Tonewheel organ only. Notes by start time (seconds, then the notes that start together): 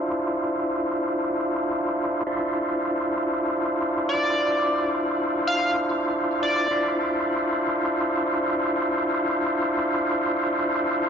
Already playing: D4 E4 F4 C5
2.27 D4 E4 F4 C5
6.71 D4 E4 F4 C5